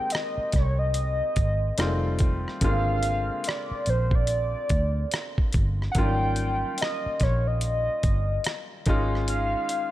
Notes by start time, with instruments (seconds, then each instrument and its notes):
Already playing: grand piano D#3 G#3 A#3 C4 G4, analog synth lead G5
0.10 analog synth lead D#5, closed hi-hat
0.15 cross-stick
0.38 muted fingered electric bass stroke
0.52 fingered electric bass C2, analog synth lead C#5, kick, cross-stick, closed hi-hat
0.79 analog synth lead D#5
0.94 closed hi-hat
1.36 fingered electric bass G#1, kick, closed hi-hat
1.78 fingered electric bass F1, grand piano D#3 G3 G#3 C4 F4, cross-stick, closed hi-hat
1.85 grand piano A3
2.19 kick, closed hi-hat
2.48 cross-stick
2.61 fingered electric bass G#1, grand piano C#3 G#3 A#3 C4 F4, analog synth lead F5, kick, closed hi-hat
2.67 grand piano D3
3.03 closed hi-hat
3.44 analog synth lead D5, closed hi-hat
3.49 cross-stick
3.71 muted fingered electric bass stroke
3.86 fingered electric bass A#1, analog synth lead C5, closed hi-hat
4.11 analog synth lead D5, kick
4.27 closed hi-hat
4.69 fingered electric bass D2, kick, closed hi-hat
5.11 cross-stick, closed hi-hat
5.38 kick
5.53 fingered electric bass G1, kick, closed hi-hat
5.82 cross-stick
5.91 grand piano D#3, analog synth lead F#5, kick, closed hi-hat
5.96 fingered electric bass G#1, grand piano F#3 A#3 C#4 F4, analog synth lead G5
6.02 grand piano G3
6.36 closed hi-hat
6.78 analog synth lead D#5, closed hi-hat
6.82 cross-stick
7.06 muted fingered electric bass stroke
7.20 fingered electric bass A#1, analog synth lead C#5, kick, cross-stick, closed hi-hat
7.47 analog synth lead D#5
7.61 closed hi-hat
8.03 fingered electric bass G1, kick, closed hi-hat
8.44 cross-stick, closed hi-hat
8.86 fingered electric bass G#1, grand piano D#3 G#3 C#4 D#4 F4, kick, closed hi-hat
9.15 cross-stick
9.28 analog synth lead F5, closed hi-hat
9.69 closed hi-hat